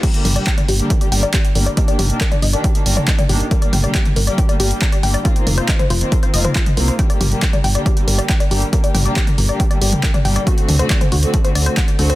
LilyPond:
<<
  \new Staff \with { instrumentName = "Synth arpeggio sound" } { \time 4/4 \key g \minor \tempo 4 = 138 g'16 r16 bes'16 d''16 g''16 d''16 g'16 r16 bes'16 d''16 g''16 d''16 g'16 r16 bes'16 d''16 | ees''16 d''16 g'16 r16 bes'16 d''16 ees''16 d''16 g'16 r16 bes'16 d''16 ees''16 d''16 g'16 r16 | bes'16 d''16 g''16 d''16 g'16 r16 bes'16 d''16 g''16 d''16 g'16 r16 bes'16 d''16 g''16 d''16 | f'16 r16 bes'16 c''16 ees''16 c''16 f'16 r16 bes'16 c''16 ees''16 c''16 f'16 r16 bes'16 c''16 |
g''16 d''16 g'16 r16 bes'16 d''16 g''16 d''16 g'16 r16 bes'16 d''16 g''16 d''16 g'16 r16 | bes'16 d''16 g''16 d''16 g'16 r16 bes'16 d''16 g''16 d''16 g'16 r16 bes'16 d''16 g''16 d''16 | fis'16 r16 a'16 c''16 d''16 c''16 fis'16 r16 a'16 c''16 d''16 c''16 fis'16 r16 a'16 c''16 | }
  \new Staff \with { instrumentName = "String section" } { \time 4/4 \key g \minor <d g bes g'>16 <d g bes g'>8 <d g bes g'>8 r8 <d g bes g'>8 <d g bes g'>16 <d g bes g'>8 r8 <d g bes g'>8 | <ees bes d' g'>16 <ees bes d' g'>8 <ees bes d' g'>8 r8 <ees bes d' g'>8 <ees bes d' g'>16 <ees bes d' g'>8 r8 <ees bes d' g'>8 | <d g bes g'>16 <d g bes g'>8 <d g bes g'>8 r8 <d g bes g'>8 <d g bes g'>16 <d g bes g'>8 r8 <d g bes g'>8 | <ees bes c' f'>16 <ees bes c' f'>8 <ees bes c' f'>8 r8 <ees bes c' f'>8 <ees bes c' f'>16 <ees bes c' f'>8 r8 <ees bes c' f'>8 |
<d g bes g'>16 <d g bes g'>8 <d g bes g'>8 r8 <d g bes g'>8 <d g bes g'>16 <d g bes g'>8 r8 <d g bes g'>8 | <d g bes g'>16 <d g bes g'>8 <d g bes g'>8 r8 <d g bes g'>8 <d g bes g'>16 <d g bes g'>8 r8 <d g bes g'>8 | <d a c' fis'>16 <d a c' fis'>8 <d a c' fis'>8 r8 <d a c' fis'>8 <d a c' fis'>16 <d a c' fis'>8 r8 <d a c' fis'>8 | }
  \new Staff \with { instrumentName = "FM bass" } { \clef bass \time 4/4 \key g \minor r8 g,,8 r8 g,,8 r8 g,,8 r8 g,,8 | r8 g,,8 r8 g,,8 r8 g,,8 r8 g,,8 | r8 g,,8 r8 g,,8 r8 g,,8 r8 g,,8 | r8 f,,8 r8 f,,8 r8 f,,8 r8 c,8 |
r8 g,,8 r8 g,,8 r8 g,,8 r8 g,,8 | r8 g,,8 r8 g,,8 r8 g,,8 r8 g,,8 | r8 d,8 r8 d,8 r8 d,8 r8 d,8 | }
  \new DrumStaff \with { instrumentName = "Drums" } \drummode { \time 4/4 <cymc hh bd>16 hh16 <hho toml>16 hh16 <hc hh bd>16 <hh toml>16 hho16 hh16 <hh bd>16 hh16 hho16 hh16 <hc hh bd>16 hh16 hho16 hh16 | <hh bd>16 hh16 <hho toml>16 hh16 <hc hh bd>16 <hh toml>16 hho16 hh16 <hh bd>16 hh16 hho16 <hh toml>16 <hc hh bd>16 <hh toml>16 hho16 hh16 | <hh bd>16 hh16 <hho toml>16 hh16 <hc hh bd>16 <hh toml>16 hho16 hh16 <hh bd>16 hh16 hho16 hh16 <hc hh bd>16 hh16 hho16 hh16 | <hh bd>16 hh16 <hho toml>16 hh16 <hc hh bd>16 <hh toml>16 hho16 hh16 <hh bd>16 hh16 hho16 <hh toml>16 <hc hh bd>16 <hh toml>16 hho16 hh16 |
<hh bd>16 hh16 <hho toml>16 hh16 <hc hh bd>16 <hh toml>16 hho16 hh16 <hh bd>16 hh16 hho16 hh16 <hc hh bd>16 hh16 hho16 hh16 | <hh bd>16 hh16 <hho toml>16 hh16 <hc hh bd>16 <hh toml>16 hho16 hh16 <hh bd>16 hh16 hho16 <hh toml>16 <hc hh bd>16 <hh toml>16 hho16 hh16 | <hh bd>16 hh16 <hho toml>16 hh16 <hc hh bd>16 <hh toml>16 hho16 hh16 <hh bd>16 hh16 hho16 hh16 <hc hh bd>16 hh16 hho16 hh16 | }
>>